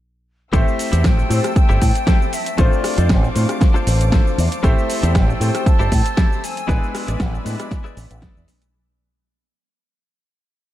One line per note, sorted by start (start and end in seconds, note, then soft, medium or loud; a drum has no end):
0.53 0.62 A1 loud
0.53 1.27 A3 loud
0.53 1.27 C4 medium
0.53 0.73 E4 medium
0.53 1.27 E4 medium
0.53 0.73 G4 medium
0.53 1.28 G4 medium
0.53 0.73 A4 loud
0.53 2.57 C5 medium
0.53 0.73 C5 loud
0.53 1.28 C5 loud
0.53 1.07 E5 loud
0.53 2.57 G5 medium
0.53 2.57 A5 medium
0.53 2.57 E6 medium
0.53 kick loud
0.53 closed hi-hat medium
0.53 shaker soft
0.68 shaker soft
0.79 open hi-hat loud
0.79 shaker medium
0.92 1.05 E2 medium
0.92 1.04 E4 medium
0.92 1.04 G4 medium
0.92 1.05 A4 medium
0.92 1.05 C5 medium
0.92 closed hi-hat medium
0.92 shaker soft
1.04 1.22 A1 loud
1.04 1.56 G5 loud
1.04 kick loud
1.04 cross-stick medium
1.04 snare loud
1.04 closed hi-hat medium
1.04 shaker soft
1.17 muted clean electric guitar stroke medium
1.17 shaker soft
1.29 1.39 A2 medium
1.29 2.55 A3 medium
1.29 2.55 C4 medium
1.29 2.55 E4 medium
1.29 2.56 G4 medium
1.29 2.56 C5 medium
1.29 muted clean electric guitar stroke soft
1.29 open hi-hat medium
1.29 shaker medium
1.44 cross-stick medium
1.44 closed hi-hat medium
1.44 shaker soft
1.56 2.35 G5 loud
1.56 muted fingered electric bass stroke soft
1.56 kick loud
1.56 closed hi-hat medium
1.56 shaker soft
1.69 1.77 G1 medium
1.69 1.81 E4 loud
1.69 1.82 G4 loud
1.69 1.82 A4 loud
1.69 1.82 C5 loud
1.69 shaker soft
1.82 1.90 A2 loud
1.82 kick medium
1.82 open hi-hat loud
1.82 shaker medium
1.95 muted clean electric guitar stroke soft
1.95 closed hi-hat medium
1.95 shaker soft
2.07 2.33 E4 medium
2.07 2.33 G4 medium
2.07 2.33 A4 medium
2.07 2.33 C5 loud
2.07 kick loud
2.07 snare loud
2.07 closed hi-hat medium
2.07 shaker soft
2.22 shaker soft
2.33 2.58 E5 loud
2.33 open hi-hat medium
2.33 shaker medium
2.46 closed hi-hat medium
2.46 shaker soft
2.58 2.67 A1 loud
2.58 3.32 A3 loud
2.58 3.32 C4 medium
2.58 2.78 D4 loud
2.58 3.32 D4 medium
2.58 2.78 F4 loud
2.58 3.33 F4 medium
2.58 2.78 A4 loud
2.58 6.65 C5 medium
2.58 2.79 C5 loud
2.58 3.33 C5 loud
2.58 3.06 D5 loud
2.58 4.62 F5 medium
2.58 6.65 A5 medium
2.58 4.62 D6 medium
2.58 kick loud
2.58 closed hi-hat medium
2.58 shaker soft
2.73 shaker soft
2.84 cross-stick medium
2.84 open hi-hat loud
2.84 shaker medium
2.97 3.12 F2 medium
2.97 3.10 D4 medium
2.97 3.10 F4 medium
2.97 3.10 A4 medium
2.97 3.10 C5 loud
2.97 closed hi-hat medium
2.97 shaker soft
3.09 3.27 A1 loud
3.09 3.58 C5 medium
3.09 kick loud
3.09 cross-stick medium
3.09 snare loud
3.09 closed hi-hat medium
3.09 shaker soft
3.23 muted clean electric guitar stroke medium
3.23 shaker soft
3.35 3.44 A2 medium
3.35 4.60 A3 medium
3.35 4.61 C4 medium
3.35 4.61 D4 medium
3.35 4.61 F4 medium
3.35 4.61 C5 medium
3.35 muted clean electric guitar stroke soft
3.35 open hi-hat loud
3.35 shaker medium
3.49 cross-stick medium
3.49 closed hi-hat medium
3.49 shaker soft
3.61 kick loud
3.61 snare medium
3.61 closed hi-hat medium
3.61 shaker soft
3.74 3.86 D4 loud
3.74 3.87 F4 loud
3.74 3.87 A4 loud
3.74 3.87 C5 loud
3.74 shaker soft
3.87 4.18 A1 medium
3.87 open hi-hat loud
3.87 shaker medium
4.00 muted clean electric guitar stroke soft
4.00 closed hi-hat medium
4.00 shaker soft
4.12 4.38 D4 medium
4.12 4.38 F4 medium
4.12 4.38 A4 medium
4.12 4.39 C5 loud
4.12 kick loud
4.12 snare loud
4.12 closed hi-hat medium
4.12 shaker soft
4.27 shaker soft
4.38 4.47 E2 medium
4.38 open hi-hat loud
4.38 shaker medium
4.52 closed hi-hat medium
4.52 shaker soft
4.63 4.72 A1 loud
4.63 5.37 A3 loud
4.63 5.37 C4 medium
4.63 4.83 E4 loud
4.63 5.38 E4 loud
4.63 4.83 G4 loud
4.63 5.38 G4 loud
4.63 4.84 A4 loud
4.63 5.38 C5 loud
4.63 4.84 C5 loud
4.63 5.11 E5 medium
4.63 6.67 G5 medium
4.63 8.70 E6 medium
4.63 kick loud
4.63 closed hi-hat medium
4.63 shaker soft
4.78 shaker soft
4.90 open hi-hat loud
4.90 shaker medium
5.03 5.17 E2 medium
5.03 5.15 E4 medium
5.03 5.15 G4 medium
5.03 5.15 A4 medium
5.03 5.15 C5 loud
5.03 closed hi-hat medium
5.03 shaker soft
5.15 5.32 A1 loud
5.15 5.63 G5 loud
5.15 kick loud
5.15 cross-stick medium
5.15 snare loud
5.15 closed hi-hat medium
5.15 shaker soft
5.28 muted clean electric guitar stroke medium
5.28 shaker soft
5.40 5.49 A2 medium
5.40 6.66 A3 medium
5.40 6.66 C4 medium
5.40 6.66 E4 medium
5.40 6.66 G4 medium
5.40 6.67 C5 medium
5.40 muted clean electric guitar stroke soft
5.40 open hi-hat loud
5.40 shaker medium
5.55 cross-stick medium
5.55 closed hi-hat medium
5.55 shaker soft
5.66 6.46 A5 loud
5.66 muted fingered electric bass stroke soft
5.66 kick loud
5.66 closed hi-hat medium
5.66 shaker soft
5.79 5.87 G1 medium
5.79 5.92 E4 loud
5.79 5.92 G4 loud
5.79 5.92 A4 loud
5.79 5.92 C5 loud
5.79 shaker soft
5.92 6.01 A2 loud
5.92 kick medium
5.92 open hi-hat loud
5.92 shaker medium
6.05 muted clean electric guitar stroke soft
6.05 closed hi-hat medium
6.05 shaker soft
6.17 6.43 E4 medium
6.17 6.43 G4 medium
6.17 6.43 A4 medium
6.17 6.44 C5 loud
6.17 kick loud
6.17 snare loud
6.17 closed hi-hat medium
6.17 shaker soft
6.32 shaker soft
6.44 7.20 G#5 loud
6.44 open hi-hat loud
6.44 shaker medium
6.57 closed hi-hat medium
6.57 shaker soft
6.67 6.77 A1 loud
6.67 7.42 G#3 loud
6.67 7.42 B3 loud
6.67 7.42 D4 medium
6.67 6.88 E4 loud
6.67 7.43 E4 loud
6.67 6.88 G#4 loud
6.67 7.43 B4 loud
6.67 6.89 B4 loud
6.67 8.72 D5 medium
6.67 6.89 D5 loud
6.67 8.72 G#5 medium
6.67 8.72 B5 medium
6.67 kick loud
6.67 closed hi-hat medium
6.67 shaker soft
6.84 shaker soft
6.95 cross-stick medium
6.95 open hi-hat loud
6.95 shaker medium
7.07 7.16 A1 medium
7.07 7.20 E4 medium
7.07 7.20 G#4 medium
7.07 7.20 B4 medium
7.07 7.20 D5 loud
7.07 closed hi-hat medium
7.07 shaker soft
7.20 7.37 A1 loud
7.20 kick loud
7.20 cross-stick medium
7.20 snare loud
7.20 closed hi-hat medium
7.20 shaker soft
7.33 muted clean electric guitar stroke medium
7.33 shaker soft
7.44 7.54 A2 loud
7.44 8.70 G#3 medium
7.44 8.70 B3 medium
7.44 8.71 D4 medium
7.44 8.71 E4 medium
7.44 8.71 B4 medium
7.44 muted clean electric guitar stroke soft
7.44 open hi-hat loud
7.44 shaker medium
7.60 cross-stick medium
7.60 closed hi-hat medium
7.60 shaker soft
7.71 kick loud
7.71 snare medium
7.71 closed hi-hat medium
7.71 shaker soft
7.84 7.96 E4 loud
7.84 7.97 G#4 loud
7.84 7.97 B4 loud
7.84 7.97 D5 loud
7.84 shaker soft
7.97 8.06 A1 loud
7.97 open hi-hat loud
7.97 shaker medium
8.10 8.26 A1 loud
8.10 muted clean electric guitar stroke soft
8.10 closed hi-hat medium
8.10 shaker soft
8.22 8.48 E4 medium
8.22 8.48 G#4 medium
8.22 8.48 B4 medium
8.22 8.49 D5 loud
8.22 kick loud
8.22 snare loud
8.22 closed hi-hat medium
8.22 shaker soft
8.36 8.44 E2 medium
8.36 shaker soft
8.48 open hi-hat loud
8.48 shaker medium
8.62 closed hi-hat medium
8.62 shaker soft